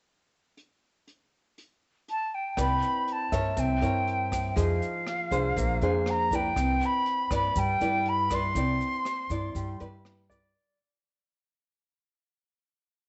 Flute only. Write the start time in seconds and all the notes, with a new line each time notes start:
2.10 A5
2.34 G5
2.60 B5
3.12 A5
3.59 G5
4.60 F5
6.10 A#5
6.35 G5
6.85 B5
7.34 B5
7.59 G5
8.09 B5
8.34 C6